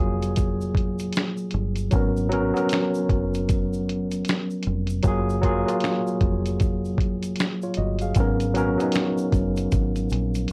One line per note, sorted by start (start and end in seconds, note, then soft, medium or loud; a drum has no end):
0.00 1.11 F1 medium
0.00 1.91 F#3 medium
0.00 1.95 A#3 medium
0.00 1.95 F4 medium
0.00 1.94 G#4 loud
0.22 closed hi-hat soft
0.22 shaker soft
0.36 kick loud
0.36 closed hi-hat medium
0.36 shaker medium
0.61 shaker soft
0.75 kick medium
0.75 closed hi-hat medium
0.99 closed hi-hat soft
0.99 shaker medium
1.13 closed hi-hat medium
1.13 shaker medium
1.17 finger snap medium
1.17 snare loud
1.37 shaker soft
1.51 1.89 G1 medium
1.51 closed hi-hat medium
1.76 closed hi-hat soft
1.76 shaker medium
1.91 2.52 G#1 loud
1.91 2.23 F#3 medium
1.91 2.24 B3 medium
1.91 2.24 C#4 medium
1.91 kick loud
1.91 closed hi-hat medium
1.91 shaker medium
1.95 2.25 A#4 medium
2.17 shaker soft
2.29 2.48 F#3 loud
2.29 2.49 B3 medium
2.29 2.49 C#4 medium
2.29 closed hi-hat medium
2.33 2.50 A#4 loud
2.53 3.68 F#3 medium
2.53 3.69 B3 medium
2.53 3.70 C#4 medium
2.53 closed hi-hat soft
2.53 shaker soft
2.58 3.70 A#4 medium
2.69 snare loud
2.69 closed hi-hat loud
2.69 shaker medium
2.74 finger snap loud
2.94 shaker medium
3.09 4.22 F#1 medium
3.09 kick loud
3.09 closed hi-hat medium
3.34 closed hi-hat soft
3.34 shaker medium
3.49 kick loud
3.49 closed hi-hat medium
3.49 shaker medium
3.73 shaker soft
3.89 closed hi-hat medium
4.11 closed hi-hat soft
4.11 shaker medium
4.25 closed hi-hat medium
4.25 shaker medium
4.29 finger snap medium
4.29 snare loud
4.50 shaker soft
4.63 closed hi-hat medium
4.67 5.01 F1 medium
4.87 closed hi-hat soft
4.87 shaker medium
5.03 5.63 F#1 loud
5.03 5.35 F#3 medium
5.03 5.35 A#3 medium
5.03 5.36 F4 medium
5.03 kick loud
5.03 closed hi-hat medium
5.03 shaker medium
5.08 5.37 G#4 loud
5.30 shaker medium
5.41 5.60 F#3 loud
5.41 5.61 A#3 medium
5.41 5.61 F4 medium
5.41 kick medium
5.41 closed hi-hat medium
5.46 5.62 G#4 medium
5.66 6.80 F#3 medium
5.66 6.81 A#3 medium
5.66 6.82 F4 medium
5.66 closed hi-hat soft
5.66 shaker soft
5.70 6.83 G#4 medium
5.80 snare loud
5.80 closed hi-hat medium
5.80 shaker medium
5.85 finger snap loud
6.07 shaker soft
6.21 7.34 F1 medium
6.21 kick loud
6.21 closed hi-hat medium
6.46 closed hi-hat soft
6.46 shaker soft
6.60 kick loud
6.60 closed hi-hat medium
6.60 shaker medium
6.85 shaker soft
6.98 kick loud
6.98 closed hi-hat medium
7.23 closed hi-hat soft
7.23 shaker medium
7.36 closed hi-hat medium
7.36 shaker medium
7.40 finger snap medium
7.40 snare loud
7.62 7.77 F4 medium
7.62 7.77 C#5 medium
7.62 shaker soft
7.74 8.13 G1 medium
7.74 8.00 F#4 medium
7.74 8.00 D#5 medium
7.74 closed hi-hat medium
7.99 8.39 G#4 soft
7.99 8.38 F5 medium
7.99 closed hi-hat soft
7.99 shaker soft
8.14 8.75 G#1 loud
8.14 8.47 F#3 medium
8.14 8.47 B3 medium
8.14 kick loud
8.14 closed hi-hat medium
8.14 shaker medium
8.19 8.48 C#4 medium
8.19 8.49 A#4 loud
8.40 closed hi-hat soft
8.40 shaker soft
8.54 8.72 F#3 medium
8.54 8.73 B3 medium
8.54 8.73 C#4 loud
8.54 closed hi-hat medium
8.54 shaker medium
8.58 8.74 A#4 loud
8.77 9.92 F#3 medium
8.77 9.93 B3 medium
8.77 9.94 C#4 medium
8.77 closed hi-hat soft
8.77 shaker soft
8.82 9.94 D#4 medium
8.92 snare loud
8.92 closed hi-hat loud
8.92 shaker medium
8.97 finger snap medium
9.18 shaker medium
9.33 9.68 F#1 medium
9.33 kick medium
9.33 closed hi-hat medium
9.33 shaker soft
9.57 closed hi-hat soft
9.57 shaker medium
9.72 10.08 G#1 medium
9.72 kick medium
9.72 closed hi-hat medium
9.72 shaker medium
9.96 closed hi-hat soft
9.96 shaker medium
10.10 10.47 A#1 medium
10.10 closed hi-hat medium
10.10 shaker medium
10.35 closed hi-hat soft
10.35 shaker medium
10.48 closed hi-hat medium